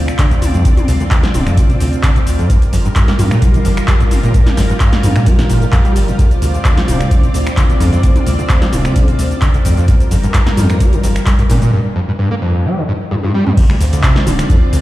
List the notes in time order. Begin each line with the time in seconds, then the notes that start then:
Already playing: D2 C4 F4 D5
0.08 finger snap, closed hi-hat, cabasa
0.19 D3, kick, clap, closed hi-hat, cabasa
0.31 D2, kick, closed hi-hat, cabasa
0.42 D2, open hi-hat, mid tom, cabasa
0.54 F2, closed hi-hat, cabasa
0.65 kick, closed hi-hat, cabasa
0.77 closed hi-hat, mid tom, cabasa
0.88 C2 D2, open hi-hat, cabasa
1.00 D2, closed hi-hat, cabasa
1.11 D2, kick, clap, closed hi-hat, cabasa
1.23 F3, snare, closed hi-hat, cabasa
1.34 D1 C2, open hi-hat, mid tom, cabasa
1.47 F2, finger snap, closed hi-hat, cabasa
1.57 D3, kick, closed hi-hat, cabasa
1.70 A2, closed hi-hat, cabasa
1.80 C2 D2, open hi-hat, cabasa
1.93 closed hi-hat, cabasa
2.03 D3, kick, clap, closed hi-hat, cabasa
2.16 D2, kick, closed hi-hat, cabasa
2.27 D2, open hi-hat, cabasa
2.39 F2, closed hi-hat, cabasa
2.50 G2 G3 F4 A#4, kick, closed hi-hat, cabasa
2.62 closed hi-hat, cabasa
2.73 G1 F2, open hi-hat, cabasa
2.85 G2, closed hi-hat, cabasa
2.96 G2, kick, clap, closed hi-hat, cabasa
3.08 A#3, snare, closed hi-hat, cabasa
3.19 F2 G2, open hi-hat, mid tom, cabasa
3.31 A#2, finger snap, closed hi-hat, cabasa
3.42 G3, kick, closed hi-hat, cabasa
3.54 D3, closed hi-hat, cabasa
3.65 G1 F2, open hi-hat, cabasa
3.77 finger snap, closed hi-hat, cabasa
3.88 G3, kick, clap, closed hi-hat, cabasa
4.00 G2, kick, closed hi-hat, cabasa
4.11 G1, open hi-hat, mid tom, cabasa
4.23 A#2, closed hi-hat, cabasa
4.34 G2, kick, closed hi-hat, cabasa
4.47 snare, closed hi-hat, mid tom, cabasa
4.57 G1 F2, snare, open hi-hat, cabasa
4.70 G2, closed hi-hat, cabasa
4.80 G2, kick, clap, closed hi-hat, cabasa
4.93 A#3, snare, closed hi-hat, cabasa
5.03 F2 G2, open hi-hat, mid tom, cabasa
5.16 A#2, finger snap, closed hi-hat, cabasa
5.26 G3, kick, closed hi-hat, cabasa
5.39 D3, snare, closed hi-hat, cabasa
5.50 G1 A#2, open hi-hat, cabasa
5.62 G2, closed hi-hat, cabasa
5.72 F2, kick, clap, closed hi-hat, cabasa
5.85 G3, kick, closed hi-hat, cabasa
5.96 G1, open hi-hat, cabasa
6.08 G2, closed hi-hat, cabasa
6.19 D2 C4 D5, kick, closed hi-hat, cabasa
6.31 closed hi-hat, cabasa
6.42 C2 D2, open hi-hat, cabasa
6.54 D2, closed hi-hat, cabasa
6.65 D2, kick, clap, closed hi-hat, cabasa
6.77 F3, snare, closed hi-hat, cabasa
6.88 D1 C2, open hi-hat, mid tom, cabasa
7.00 finger snap, cabasa
7.11 D3, kick, closed hi-hat, cabasa
7.23 A2, closed hi-hat, cabasa
7.34 C2 D2, open hi-hat, cabasa
7.47 finger snap, closed hi-hat, cabasa
7.57 D3, kick, clap, closed hi-hat, cabasa
7.69 D2, kick, closed hi-hat, cabasa
7.80 D2 F2, open hi-hat, mid tom, cabasa
7.93 F2, closed hi-hat, cabasa
8.03 D2, kick, closed hi-hat, cabasa
8.16 closed hi-hat, mid tom, cabasa
8.26 C2 D2, open hi-hat, cabasa
8.39 D2, closed hi-hat, cabasa
8.49 D2, kick, clap, closed hi-hat, cabasa
8.62 F3, snare, closed hi-hat, cabasa
8.73 D1 C2, open hi-hat, mid tom, cabasa
8.85 finger snap, closed hi-hat, cabasa
8.96 D3, kick, closed hi-hat, cabasa
9.08 A2, closed hi-hat, cabasa
9.19 C2 D2, open hi-hat, cabasa
9.31 closed hi-hat, cabasa
9.42 D3, kick, clap, closed hi-hat, cabasa
9.54 D2, kick, closed hi-hat, cabasa
9.65 D2 F2, open hi-hat, cabasa
9.77 F2, closed hi-hat, cabasa
9.88 G2 G3 A#4, kick, closed hi-hat, cabasa
10.00 closed hi-hat, cabasa
10.11 G1 F2, open hi-hat, cabasa
10.23 G2, closed hi-hat, cabasa
10.34 G2, kick, clap, closed hi-hat, cabasa
10.47 A#3, snare, closed hi-hat, cabasa
10.57 F2 G2, open hi-hat, mid tom, cabasa
10.70 finger snap, closed hi-hat, cabasa
10.80 G3, kick, closed hi-hat, cabasa
10.93 D3, closed hi-hat, cabasa
11.03 G1 F2, open hi-hat, cabasa
11.16 finger snap, closed hi-hat, cabasa
11.26 G3, kick, clap, closed hi-hat, cabasa
11.39 G2, kick, closed hi-hat, cabasa
11.50 G1 A#2, open hi-hat, mid tom, cabasa
11.62 A#2, closed hi-hat, cabasa
11.73 G2
11.96 F2
12.08 G2
12.19 G2
12.31 A#3
12.42 F2
12.65 G3
12.77 D3
12.88 G2
13.11 G2, high tom
13.23 G2, high tom
13.34 G3
13.47 G2, mid tom
13.57 D2 C4 F4 D5, kick, closed hi-hat, crash, cabasa
13.70 D2, finger snap
13.81 D2, open hi-hat, cabasa
13.93 D2, closed hi-hat, cabasa
14.03 C3, kick, clap, closed hi-hat, cabasa
14.16 F3, snare
14.27 D1 D3, open hi-hat, mid tom, cabasa
14.39 D3, finger snap, closed hi-hat, cabasa
14.50 F2, kick, closed hi-hat, cabasa
14.73 D2, open hi-hat, cabasa